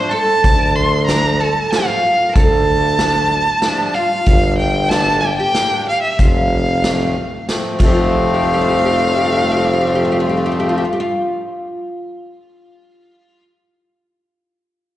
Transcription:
Already playing: accordion F3 A3 D4, violin C5
0.09 oud A4, violin A5
0.44 tuba D2, kick, closed hi-hat
0.58 oud A#4
0.76 violin C6
1.06 accordion F3 D4, oud A#4, violin A#5, snare, closed hi-hat
1.40 oud A4, violin A5
1.71 accordion F3 A3 C4, oud F4, violin F5, snare, closed hi-hat
1.80 oud G4
1.85 oud F4
2.29 oud A#4
2.34 tuba D2, oud A4, violin A5, kick, closed hi-hat
2.99 accordion F3 A3 D4, snare, closed hi-hat
3.62 accordion F3 A3 D4, oud G4, snare, closed hi-hat
3.94 oud F4, violin F5
4.26 tuba G1, kick, closed hi-hat
4.58 violin G5
4.89 accordion G3 A#3 D4, oud A4, violin A5, snare, closed hi-hat
5.21 oud G4, violin G5
5.37 oud G4, violin G5
5.55 accordion G3 A#3 D4, snare, closed hi-hat
5.89 violin F5
6.02 violin E5
6.19 tuba F1, oud F4, violin F5, kick, closed hi-hat
6.83 accordion F3 A3 C4, snare, closed hi-hat
7.48 accordion F3 A3 C4, snare, closed hi-hat
7.79 tuba F1, accordion F3 A3 C4, oud F4, violin F5, kick, crash
7.86 oud G4
7.95 oud F4
8.34 oud G4
8.43 oud F4
8.54 oud G4
8.61 oud F4
8.70 oud G4
8.79 oud F4
8.85 oud G4
8.93 oud F4
8.99 oud G4
9.07 oud F4
9.16 oud G4
9.24 oud F4
9.32 oud G4
9.42 oud F4
9.51 oud G4
9.57 oud F4
9.64 oud G4
9.73 oud F4
9.81 oud G4
9.87 oud F4
9.95 oud G4
10.05 oud F4
10.12 oud G4
10.20 oud F4
10.29 oud G4
10.37 oud F4
10.46 oud G4
10.52 oud F4
10.60 oud G4
10.69 oud F4
10.78 oud G4
10.85 oud F4
10.93 oud G4
11.00 oud F4

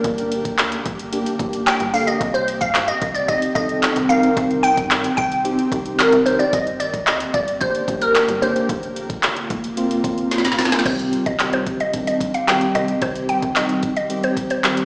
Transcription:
Already playing: ambient pad D3 A#3 G4, tine electric piano A#3 D4 A#4, synth pluck A#4
0.04 fm bass G1, kick, closed hi-hat
0.18 closed hi-hat
0.32 closed hi-hat
0.45 fm bass D2, kick, closed hi-hat
0.58 snare, clap, closed hi-hat
0.72 closed hi-hat
0.86 fm bass G1, kick, closed hi-hat
0.99 closed hi-hat
1.12 tine electric piano A#3 D4 G4, closed hi-hat
1.26 closed hi-hat
1.39 fm bass G1, tine electric piano A#3 D4 G4, kick, closed hi-hat
1.53 closed hi-hat
1.67 synth pluck G5, snare, clap, closed hi-hat
1.80 fm bass G1, closed hi-hat
1.94 tine electric piano A#3 D4 A4, synth pluck F5, open hi-hat
2.07 tine electric piano A#3 D4 G4, synth pluck D#5, closed hi-hat
2.21 fm bass C2, ambient pad D#3 C4, kick, closed hi-hat
2.34 synth pluck C5, closed hi-hat
2.48 closed hi-hat
2.61 fm bass G2, synth pluck F5, kick, closed hi-hat
2.75 snare, clap, closed hi-hat
2.88 synth pluck D#5, closed hi-hat
3.02 fm bass C2, kick, closed hi-hat
3.15 synth pluck D5, closed hi-hat
3.28 tine electric piano C4 D#4 G4, synth pluck D#5, kick, closed hi-hat
3.42 closed hi-hat
3.55 fm bass C2, tine electric piano C4 D#4 A4, synth pluck D#5, kick, closed hi-hat
3.69 closed hi-hat
3.83 snare, clap, closed hi-hat
3.96 fm bass C2, closed hi-hat
4.09 tine electric piano C4 D#4 A#4, synth pluck F5, closed hi-hat
4.23 tine electric piano C4 D#4 A#4, closed hi-hat
4.37 fm bass C2, kick, closed hi-hat
4.51 closed hi-hat
4.63 synth pluck G5, closed hi-hat
4.77 fm bass G2, kick, closed hi-hat
4.91 snare, clap, closed hi-hat
5.04 closed hi-hat
5.17 fm bass C2, synth pluck G5, kick, closed hi-hat
5.32 closed hi-hat
5.45 tine electric piano C4 D#4 G4, closed hi-hat
5.59 closed hi-hat
5.72 fm bass C2, tine electric piano C4 D#4 G4, kick, closed hi-hat
5.86 closed hi-hat
5.99 synth pluck A#4, snare, clap, closed hi-hat
6.12 fm bass C2, closed hi-hat
6.26 tine electric piano C4 D#4 A#4, synth pluck C5, closed hi-hat
6.39 tine electric piano C4 D#4 G4, synth pluck D5, closed hi-hat
6.53 fm bass G1, ambient pad D3 A#3 G4, synth pluck D#5, kick, closed hi-hat
6.67 closed hi-hat
6.80 synth pluck D5, closed hi-hat
6.94 fm bass D2, kick, closed hi-hat
7.07 synth pluck D#5, snare, clap, closed hi-hat
7.20 closed hi-hat
7.34 fm bass G1, synth pluck D5, kick, closed hi-hat
7.48 closed hi-hat
7.61 tine electric piano A#3 D4 G4, synth pluck C5, kick, closed hi-hat
7.75 closed hi-hat
7.88 fm bass G1, tine electric piano A#3 D4 G4, kick, closed hi-hat
8.01 synth pluck A#4, closed hi-hat
8.15 snare, clap, closed hi-hat
8.28 fm bass G1, closed hi-hat
8.42 tine electric piano A#3 D4 G4, synth pluck C5, closed hi-hat
8.55 tine electric piano A#3 D4 G4, closed hi-hat
8.69 fm bass F1, ambient pad C3 F4, kick, closed hi-hat
8.83 closed hi-hat
8.96 closed hi-hat
9.10 fm bass C2, kick, closed hi-hat
9.23 snare, clap, closed hi-hat
9.36 closed hi-hat
9.50 fm bass F1, kick, closed hi-hat
9.64 closed hi-hat
9.77 tine electric piano A#3 C4 F4, closed hi-hat
9.91 closed hi-hat
10.04 fm bass F1, tine electric piano A#3 C4 F4, kick, closed hi-hat
10.18 closed hi-hat
10.31 snare, closed hi-hat
10.38 snare
10.45 fm bass A#1, snare, closed hi-hat
10.52 snare
10.58 tine electric piano A#3 C4 F4, snare, open hi-hat
10.65 snare
10.72 tine electric piano A#3 C4 F4, snare, closed hi-hat
10.79 snare
10.86 fm bass C2, tine electric piano D#3 G3 C4 G4, ambient pad D#3 C4 G4, synth pluck C5, kick, closed hi-hat, crash
10.99 closed hi-hat
11.13 closed hi-hat
11.26 fm bass C2, synth pluck D#5, kick, closed hi-hat
11.39 tine electric piano D#3 G3 C4 G4, snare, clap, closed hi-hat
11.53 synth pluck C5, closed hi-hat
11.67 kick, closed hi-hat
11.80 synth pluck D#5, closed hi-hat
11.93 tine electric piano D#3 G3 C4 D4, kick, closed hi-hat
12.07 synth pluck D#5, closed hi-hat
12.21 kick, closed hi-hat
12.34 synth pluck F5, closed hi-hat
12.47 tine electric piano D#3 G3 C4 G4, synth pluck G5, snare, clap, closed hi-hat
12.61 closed hi-hat
12.75 fm bass C2, synth pluck D#5, closed hi-hat
12.88 closed hi-hat
13.02 fm bass C2, tine electric piano D#3 G3 C4 G4, synth pluck C5, kick, closed hi-hat
13.15 closed hi-hat
13.29 synth pluck G5, closed hi-hat
13.42 fm bass C2, kick, closed hi-hat
13.56 tine electric piano D#3 G3 C4 D#4, synth pluck D#5, snare, clap, closed hi-hat
13.69 closed hi-hat
13.83 kick, closed hi-hat
13.97 synth pluck D#5, closed hi-hat
14.10 tine electric piano D#3 G3 C4 G4, closed hi-hat
14.23 synth pluck C5, closed hi-hat
14.37 kick, closed hi-hat
14.50 synth pluck C5, closed hi-hat
14.64 tine electric piano D#3 G3 C4 G4, snare, clap, closed hi-hat
14.77 closed hi-hat

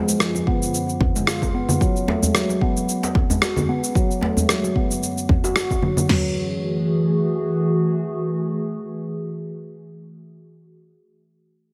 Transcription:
Already playing: ambient pad F#2 D3 C#4 F4 B4
0.08 handpan G#3, shaker
0.20 handpan F3, cross-stick, shaker
0.35 handpan F3, djembe slap, shaker
0.47 handpan B3, kick
0.63 shaker
0.75 shaker
0.89 shaker
1.00 kick, djembe bass
1.15 handpan G#3, djembe slap, shaker
1.27 handpan F4, cross-stick, shaker
1.42 kick, djembe tone, shaker
1.54 handpan B3
1.69 low conga, shaker
1.81 handpan F#3, ambient pad F#3 A5, kick, shaker
1.96 shaker
2.08 handpan A3, djembe slap, djembe tone
2.23 handpan G#3, djembe bass, shaker
2.35 handpan F#3, cross-stick, shaker
2.49 handpan F#3, djembe slap, shaker
2.61 handpan B3, kick
2.77 djembe tone, shaker
2.89 shaker
3.03 djembe slap, shaker
3.15 kick, djembe slap, djembe tone
3.30 handpan G#3, djembe bass, shaker
3.42 handpan F#4, cross-stick, djembe slap, shaker
3.56 djembe tone, low conga, shaker
3.69 handpan B3
3.84 shaker
3.95 ambient pad F#2 D3, handpan F#3, kick, shaker
4.11 shaker
4.21 handpan A3, djembe slap, djembe tone
4.37 handpan G#3, djembe bass, shaker
4.49 handpan F#3, cross-stick, shaker
4.64 handpan F#3, djembe slap, shaker
4.76 handpan B3, kick
4.90 djembe tone, shaker
5.03 shaker
5.18 shaker
5.29 kick, djembe bass
5.44 handpan F#4, djembe slap, shaker
5.56 handpan F#4, cross-stick, shaker
5.71 kick, djembe tone, shaker
5.82 handpan F#3, low conga
5.97 low conga, shaker
6.09 ambient pad E3 A3 F#4 G#4, handpan F#3, snare, floor tom, crash

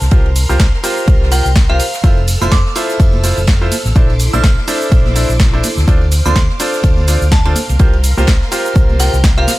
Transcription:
Already playing: string machine A#4 C6 F6
0.01 fingered electric bass C2, snare, shaker
0.11 fingered electric bass C2, upright piano F4 G4 A#4 C5, kick, ride, shaker
0.26 ride
0.36 open hi-hat, ride, shaker
0.49 fingered electric bass C2, upright piano F4 G4 A#4 C5, snare, shaker
0.59 fingered electric bass C2, kick, snare, ride, shaker
0.74 snare
0.84 upright piano F4 G4 A#4 C5, open hi-hat, ride, shaker
0.98 shaker
1.08 fingered electric bass C2, kick, ride, shaker
1.22 snare
1.31 upright piano F4 G4 A#4 C5, synth bell G5, open hi-hat, ride, shaker
1.45 fingered electric bass C2, shaker
1.56 kick, snare, ride, shaker
1.69 fingered electric bass C2, upright piano F4 G4 A#4 C5, synth bell F5, ride
1.80 open hi-hat, ride, shaker
1.93 snare, shaker
2.04 fingered electric bass F1, upright piano E4 F4 A4 C5, string machine A4 E6, kick, ride, tambourine, shaker
2.17 tambourine
2.28 open hi-hat, ride, tambourine, shaker
2.41 fingered electric bass F1, upright piano E4 F4 A4 C5, synth bell C6, tambourine, high conga, shaker
2.51 fingered electric bass F1, synth bell D6, kick, snare, ride, tambourine, shaker
2.66 snare
2.75 upright piano E4 F4 A4 C5, open hi-hat, ride, tambourine, shaker
2.89 snare, tambourine, shaker
3.00 fingered electric bass F1, kick, ride, tambourine, shaker
3.12 tambourine, high conga
3.23 upright piano E4 F4 A4 C5, open hi-hat, ride, tambourine, shaker
3.37 fingered electric bass F1, ride, tambourine, shaker
3.47 kick, snare, ride, tambourine, shaker
3.61 upright piano E4 F4 A4 C5, tambourine
3.72 open hi-hat, ride, tambourine, high conga, shaker
3.85 fingered electric bass A1, snare, tambourine, shaker
3.95 fingered electric bass A#1, upright piano D4 E4 A4 C5, string machine E4 C6 D6, kick, ride, tambourine, shaker
4.10 ride, tambourine
4.19 open hi-hat, ride, tambourine, shaker
4.33 fingered electric bass A#1, upright piano D4 E4 A4 C5, synth bell F6, snare, tambourine, high conga, shaker
4.44 fingered electric bass A#1, kick, snare, ride, tambourine, shaker
4.57 snare
4.67 upright piano D4 E4 A4 C5, open hi-hat, ride, tambourine, shaker
4.81 tambourine, shaker
4.92 fingered electric bass A#1, kick, ride, tambourine, shaker
5.05 snare, tambourine, high conga
5.16 upright piano D4 E4 A4 C5, open hi-hat, ride, tambourine, shaker
5.29 fingered electric bass A#1, tambourine, shaker
5.39 kick, snare, ride, tambourine, shaker
5.53 upright piano D4 E4 A4 C5, ride, tambourine
5.63 open hi-hat, ride, tambourine, high conga, shaker
5.77 fingered electric bass D2, snare, tambourine, shaker
5.88 fingered electric bass D2, upright piano D4 F4 A4 C5, string machine C5 F5 D6, kick, ride, tambourine, shaker
6.01 tambourine
6.12 open hi-hat, ride, tambourine, shaker
6.25 fingered electric bass D2, upright piano D4 F4 A4 C5, synth bell C6, tambourine, high conga, shaker
6.35 fingered electric bass D2, kick, snare, ride, shaker
6.49 snare
6.59 upright piano D4 F4 A4 C5, open hi-hat, ride, tambourine, shaker
6.73 snare, tambourine, shaker
6.83 fingered electric bass D2, kick, ride, tambourine, shaker
6.97 tambourine, high conga
7.08 upright piano D4 F4 A4 C5, open hi-hat, ride, tambourine, shaker
7.21 fingered electric bass D2, tambourine, shaker
7.32 synth bell A5, kick, snare, ride, tambourine, shaker
7.45 upright piano D4 F4 A4 C5, synth bell A5, ride, tambourine
7.56 string machine A#4 C6, open hi-hat, tambourine, high conga, shaker
7.69 fingered electric bass C2, ride, tambourine, shaker
7.79 fingered electric bass C2, upright piano F4 G4 A#4 C5, kick, ride, tambourine, shaker
7.93 ride, tambourine
8.03 open hi-hat, ride, tambourine, shaker
8.17 fingered electric bass C2, upright piano F4 G4 A#4 C5, snare, tambourine, high conga, shaker
8.27 fingered electric bass C2, kick, snare, ride, tambourine, shaker
8.42 snare, tambourine
8.52 upright piano F4 G4 A#4 C5, open hi-hat, ride, tambourine, shaker
8.66 tambourine, shaker
8.75 fingered electric bass C2, kick, ride, tambourine, shaker
8.89 tambourine, high conga
8.99 upright piano F4 G4 A#4 C5, synth bell G5, snare, open hi-hat, ride, tambourine, shaker
9.13 fingered electric bass C2, snare, tambourine, shaker
9.24 kick, snare, ride, tambourine, shaker
9.37 upright piano F4 G4 A#4 C5, synth bell F5, ride, tambourine
9.48 snare, open hi-hat, ride, tambourine, high conga, shaker

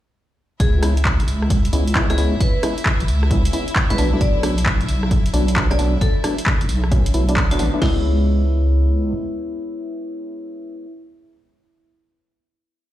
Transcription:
0.60 wobble bass C#2, violin section E4 E5, vibraphone G#4, kick, closed hi-hat
0.83 synth stab G#3 B3 C#4 E4, cross-stick, open hi-hat
0.97 closed hi-hat
1.05 kick, clap
1.20 wobble bass G#1, closed hi-hat
1.28 wobble bass C#2, open hi-hat
1.42 cross-stick
1.50 kick, closed hi-hat
1.65 closed hi-hat
1.73 wobble bass C#2, synth stab G#3 B3 C#4 E4, open hi-hat
1.88 closed hi-hat
1.95 synth stab G#3 B3 C#4 E4, kick, clap
2.10 synth stab G#3 B3 C#4 E4, vibraphone G#4, cross-stick, closed hi-hat
2.18 synth stab G#3 B3 C#4 E4, open hi-hat
2.40 vibraphone B4, kick, closed hi-hat
2.63 synth stab G#3 B3 C#4 E4, cross-stick, open hi-hat
2.78 closed hi-hat
2.86 kick, clap
3.00 wobble bass G#1, closed hi-hat
3.08 wobble bass C#2, open hi-hat
3.23 cross-stick
3.31 synth stab G#3 B3 C#4 E4, kick, closed hi-hat
3.45 closed hi-hat
3.53 synth stab G#3 B3 C#4 E4, open hi-hat
3.68 closed hi-hat
3.76 kick, clap
3.90 wobble bass C#2, synth stab G#3 B3 C#4 E4, vibraphone B4, closed hi-hat
3.98 wobble bass B1, synth stab F#3 A3 B3 D4, open hi-hat
4.13 synth stab F#3 A3 B3 D4
4.21 wobble bass B1, vibraphone D5, kick, closed hi-hat
4.43 synth stab F#3 A3 B3 D4, cross-stick, open hi-hat
4.58 closed hi-hat
4.66 kick, clap
4.81 wobble bass F#1, closed hi-hat
4.88 wobble bass B1, open hi-hat
5.03 cross-stick
5.11 kick, closed hi-hat
5.26 closed hi-hat
5.33 wobble bass B1, synth stab F#3 A3 B3 D4, open hi-hat
5.48 closed hi-hat
5.56 synth stab F#3 A3 B3 D4, kick, clap
5.71 synth stab F#3 A3 B3 C#4, vibraphone D5, cross-stick, closed hi-hat
5.79 synth stab F#3 A3 B3 D4, open hi-hat
6.01 vibraphone A4, kick, closed hi-hat
6.24 synth stab F#3 A3 B3 D4, cross-stick, open hi-hat
6.38 closed hi-hat
6.46 kick, clap
6.61 wobble bass F#1, closed hi-hat
6.69 wobble bass B1, open hi-hat
6.84 cross-stick
6.91 synth stab F#3 A3 B3 C#4, kick, closed hi-hat
7.06 wobble bass B1, closed hi-hat
7.14 wobble bass B1, synth stab F#3 A3 B3 E4, open hi-hat
7.29 synth stab F#3 A3 B3 D4, closed hi-hat
7.37 kick, clap
7.51 synth stab F#3 A3 B3 D4, vibraphone F#4, closed hi-hat
7.59 wobble bass A1, synth stab F#3 A3 B3 D4, open hi-hat
7.74 synth stab F#3 A3 B3 D4
7.82 wobble bass C#2, synth stab G#3 B3 C#4 E4, vibraphone E4, kick, snare, crash

